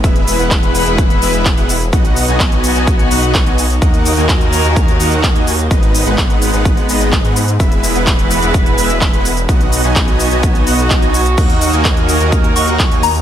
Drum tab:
CC |----------------|----------------|----------------|----------------|
HH |xxoxxxoxxxoxxxox|xxoxxxoxxxoxxxox|xxoxxxoxxxoxxxox|xxoxxxoxxxoxxxox|
SH |xxxxxxxxxxxxxxxx|xxxxxxxxxxxxxxxx|xxxxxxxxxxxxxxxx|xxxxxxxxxxxxxxxx|
CP |----x-------x---|----x-------x---|----x-------x---|----x-------x---|
BD |o---o---o---o---|o---o---o---o---|o---o---o---o---|o---o---o---o---|

CC |----------------|----------------|x---------------|
HH |xxoxxxoxxxoxxxox|xxoxxxoxxxoxxxox|xxoxxxoxxxoxxxox|
SH |xxxxxxxxxxxxxxxx|xxxxxxxxxxxxxxxx|xxxxxxxxxxxxxxxx|
CP |----x-------x---|----x-------x---|----x-------x---|
BD |o---o---o---o---|o---o---o---o---|o---o---o---o---|